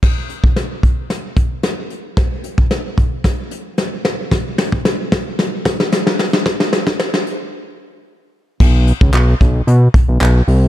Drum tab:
CC |x---------------|----------------|----------------|----------------|
HH |--x-x-x-x-x-x-x-|x-x-x-x-x-x-x-x-|x-x-x-x-x-x-x-o-|x-x-x-x---------|
CP |----------------|----------------|----------------|----------------|
SD |o---o---o---o---|o---o---o---o-o-|o-o-o-o-o-oooooo|oooooo----------|
BD |o--o--o---o-----|o--o--o-o-------|o--o--o---o-----|o--o------------|

CC |x---------------|
HH |--x-x-x-x-x-x-o-|
CP |----x-------x---|
SD |----------------|
BD |o--o--o---o-----|